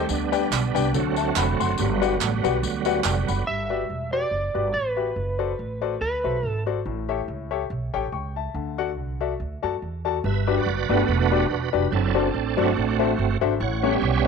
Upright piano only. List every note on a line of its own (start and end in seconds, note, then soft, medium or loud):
0.09 0.71 D3 medium
0.32 0.44 D4 loud
0.32 0.44 G4 medium
0.32 0.44 B4 medium
0.32 0.44 D5 medium
0.32 0.44 G5 loud
0.74 0.86 D4 medium
0.74 0.86 G4 medium
0.74 0.86 B4 medium
0.74 0.86 D5 medium
0.74 0.86 G5 loud
0.93 1.55 D3 medium
1.17 1.35 E5 medium
1.17 1.35 A5 medium
1.36 1.59 F#5 medium
1.36 1.59 B5 medium
1.60 2.00 F#5 medium
1.60 2.00 C6 medium
1.79 2.40 G2 medium
2.01 2.13 F#4 medium
2.01 2.13 G4 medium
2.01 2.13 B4 medium
2.01 2.13 D5 medium
2.01 2.13 F#5 medium
2.44 2.55 F#4 medium
2.44 2.55 G4 medium
2.44 2.55 B4 medium
2.44 2.55 D5 medium
2.44 2.55 F#5 medium
2.86 2.97 F#4 loud
2.86 2.97 G4 medium
2.86 2.97 B4 medium
2.86 2.97 D5 medium
2.86 2.97 F#5 loud
3.04 3.27 D5 medium
3.04 3.27 G5 medium
3.28 3.69 F#5 medium
3.28 3.68 B5 medium
3.47 4.09 G2 medium
3.70 3.81 F#4 medium
3.70 3.81 G4 medium
3.70 3.81 B4 medium
3.70 3.81 D5 medium
4.12 4.24 F#4 medium
4.12 4.24 G4 medium
4.12 4.24 B4 medium
4.12 4.24 D5 medium
4.54 4.66 F#4 medium
4.54 4.66 G4 medium
4.54 4.66 B4 medium
4.54 4.66 D5 medium
4.96 5.08 F#4 medium
4.96 5.08 G4 medium
4.96 5.08 B4 medium
4.96 5.08 E5 medium
5.39 5.50 F#4 medium
5.39 5.51 A4 medium
5.39 5.50 C5 medium
5.39 5.51 D5 medium
5.81 5.93 F#4 medium
5.81 5.93 A4 medium
5.81 5.93 C5 medium
5.81 5.93 D5 medium
6.24 6.35 F#4 medium
6.24 6.36 A4 medium
6.24 6.35 C5 medium
6.24 6.35 E5 medium
6.66 6.78 F#4 medium
6.66 6.78 A4 medium
6.66 6.78 C5 medium
6.66 6.78 D5 medium
6.86 7.47 A2 medium
7.09 7.20 G4 medium
7.09 7.20 A4 medium
7.09 7.20 C#5 medium
7.09 7.20 E5 medium
7.51 7.62 G4 medium
7.51 7.62 A4 medium
7.51 7.62 C#5 medium
7.51 7.62 E5 medium
7.94 8.05 G4 medium
7.94 8.05 A4 medium
7.94 8.05 C#5 medium
7.94 8.05 G5 medium
8.12 8.35 G5 medium
8.12 8.35 C#6 medium
8.36 8.77 E5 medium
8.36 8.76 A5 medium
8.55 9.17 D3 medium
8.78 8.89 F#4 medium
8.78 8.89 A4 medium
8.78 8.89 D5 medium
8.78 8.89 F#5 medium
9.20 9.32 F#4 medium
9.20 9.32 A4 medium
9.20 9.32 D5 medium
9.20 9.32 E5 medium
9.62 9.74 F#4 medium
9.62 9.74 A4 medium
9.62 9.74 D5 medium
9.62 9.74 A5 medium
10.05 10.16 F#4 medium
10.05 10.16 A4 medium
10.05 10.16 D5 medium
10.05 10.16 A5 medium
10.24 10.85 G2 medium
10.47 10.58 D4 medium
10.47 10.58 F#4 medium
10.47 10.58 G4 medium
10.47 10.58 B4 medium
10.47 10.58 D5 medium
10.90 11.00 D4 medium
10.90 11.00 F#4 medium
10.90 11.00 G4 medium
10.90 11.00 B4 medium
10.90 11.00 D5 medium
11.32 11.42 D4 medium
11.32 11.42 F#4 medium
11.32 11.42 G4 medium
11.32 11.42 B4 medium
11.32 11.42 D5 medium
11.73 11.84 D4 medium
11.73 11.84 F#4 medium
11.73 11.84 G4 medium
11.73 11.84 B4 medium
11.73 11.84 D5 medium
12.15 12.26 D4 medium
12.15 12.26 F#4 medium
12.15 12.26 A4 medium
12.15 12.26 C5 medium
12.15 12.26 D5 medium
12.57 12.68 D4 medium
12.57 12.68 F#4 medium
12.57 12.68 A4 medium
12.57 12.68 C5 medium
12.57 12.68 D5 medium
12.99 13.10 D4 medium
12.99 13.10 F#4 medium
12.99 13.10 A4 medium
12.99 13.10 C5 medium
12.99 13.10 E5 medium
13.41 13.52 D4 loud
13.41 13.52 F#4 medium
13.41 13.52 A4 medium
13.41 13.52 C5 medium
13.41 13.52 E5 loud
13.60 14.21 A2 medium
13.83 13.94 C#4 medium
13.83 13.94 E4 medium
13.83 13.94 G4 medium
13.83 13.94 A4 medium
13.83 13.94 C#5 medium